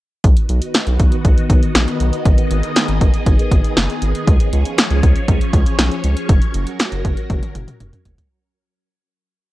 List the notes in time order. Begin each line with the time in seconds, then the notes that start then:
0.24 B1 D#3 B3 F#4 D#5, kick, closed hi-hat
0.37 closed hi-hat
0.49 B1, closed hi-hat
0.62 closed hi-hat
0.74 snare, closed hi-hat
0.87 B1, closed hi-hat
1.00 B1, kick, closed hi-hat
1.12 closed hi-hat
1.25 B1, kick, closed hi-hat
1.38 closed hi-hat
1.50 B1, kick, closed hi-hat
1.63 closed hi-hat
1.75 A#1, snare, closed hi-hat
1.88 closed hi-hat
2.00 B1, closed hi-hat
2.13 closed hi-hat
2.26 G#1 G#4, kick, closed hi-hat
2.38 closed hi-hat
2.51 G#1, closed hi-hat
2.63 closed hi-hat
2.76 snare, closed hi-hat
2.89 G#1, closed hi-hat
3.01 G#1, kick, closed hi-hat
3.14 closed hi-hat
3.26 G#1, kick, closed hi-hat
3.39 closed hi-hat
3.51 G#1, kick, closed hi-hat
3.64 closed hi-hat
3.77 F#1, snare, closed hi-hat
3.90 closed hi-hat
4.02 G#1, closed hi-hat
4.15 closed hi-hat
4.27 C#2 F3 C#4 C#5, kick, closed hi-hat
4.40 closed hi-hat
4.53 C#2, closed hi-hat
4.65 closed hi-hat
4.78 snare, closed hi-hat
4.90 C#2, closed hi-hat
5.03 C#2, kick, closed hi-hat
5.16 closed hi-hat
5.28 C#2, kick, closed hi-hat
5.41 closed hi-hat
5.53 C#2, kick, closed hi-hat
5.66 closed hi-hat
5.79 B1, snare, closed hi-hat
5.92 closed hi-hat
6.04 C#2, closed hi-hat
6.17 closed hi-hat
6.29 F#1 F#3 A#4, kick, closed hi-hat
6.42 closed hi-hat
6.54 F#1, closed hi-hat
6.67 closed hi-hat
6.79 snare, closed hi-hat
6.92 F#1, closed hi-hat
7.05 F#1, kick, closed hi-hat
7.17 closed hi-hat
7.30 F#1, kick, closed hi-hat, high tom
7.43 closed hi-hat, high tom
7.55 F#1, closed hi-hat, mid tom
7.68 closed hi-hat, mid tom
7.80 F1, closed hi-hat, mid tom
7.93 closed hi-hat, mid tom
8.05 F#1, closed hi-hat, floor tom
8.18 closed hi-hat, floor tom